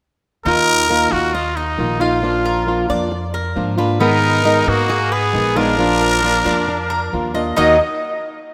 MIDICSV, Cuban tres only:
0, 0, Header, 1, 2, 480
1, 0, Start_track
1, 0, Key_signature, -6, "minor"
1, 0, Tempo, 445765
1, 488, Time_signature, 4, 2, 24, 8
1, 9194, End_track
2, 0, Start_track
2, 0, Title_t, "Cuban tres"
2, 0, Program_c, 0, 25
2, 491, Note_on_c, 0, 63, 69
2, 953, Note_off_c, 0, 63, 0
2, 969, Note_on_c, 0, 70, 60
2, 1431, Note_off_c, 0, 70, 0
2, 1449, Note_on_c, 0, 75, 60
2, 1676, Note_off_c, 0, 75, 0
2, 1689, Note_on_c, 0, 75, 61
2, 2149, Note_off_c, 0, 75, 0
2, 2163, Note_on_c, 0, 65, 65
2, 2626, Note_off_c, 0, 65, 0
2, 2643, Note_on_c, 0, 70, 71
2, 3105, Note_off_c, 0, 70, 0
2, 3120, Note_on_c, 0, 74, 73
2, 3583, Note_off_c, 0, 74, 0
2, 3596, Note_on_c, 0, 70, 69
2, 4061, Note_off_c, 0, 70, 0
2, 4074, Note_on_c, 0, 71, 63
2, 4307, Note_off_c, 0, 71, 0
2, 4313, Note_on_c, 0, 59, 71
2, 4779, Note_off_c, 0, 59, 0
2, 4789, Note_on_c, 0, 63, 64
2, 5257, Note_off_c, 0, 63, 0
2, 5268, Note_on_c, 0, 68, 62
2, 5504, Note_off_c, 0, 68, 0
2, 5511, Note_on_c, 0, 71, 67
2, 5979, Note_off_c, 0, 71, 0
2, 5991, Note_on_c, 0, 65, 68
2, 6460, Note_off_c, 0, 65, 0
2, 6473, Note_on_c, 0, 70, 69
2, 6942, Note_off_c, 0, 70, 0
2, 6952, Note_on_c, 0, 74, 71
2, 7422, Note_off_c, 0, 74, 0
2, 7430, Note_on_c, 0, 70, 67
2, 7903, Note_off_c, 0, 70, 0
2, 7910, Note_on_c, 0, 75, 67
2, 8144, Note_off_c, 0, 75, 0
2, 8146, Note_on_c, 0, 63, 86
2, 8154, Note_on_c, 0, 70, 61
2, 8157, Note_on_c, 0, 75, 96
2, 8380, Note_off_c, 0, 63, 0
2, 8381, Note_off_c, 0, 70, 0
2, 8385, Note_off_c, 0, 75, 0
2, 9194, End_track
0, 0, End_of_file